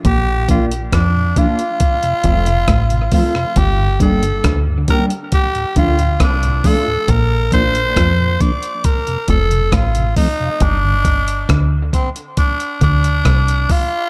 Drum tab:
HH |x-xxx-xxxxxxxxo-|x-xxx-xxxxxxxxo-|x-xxx-xxxxxxxxo-|x-xxx-xxxxxxxxo-|
SD |----r-------r--r|----r-------r---|----r-------r---|----r-------r---|
BD |o-o-o-o-o-o-o-o-|o-o-o-o-o-o-o-o-|o-o-o-o-o-o-o-o-|o-o-o-o-o-o-o-o-|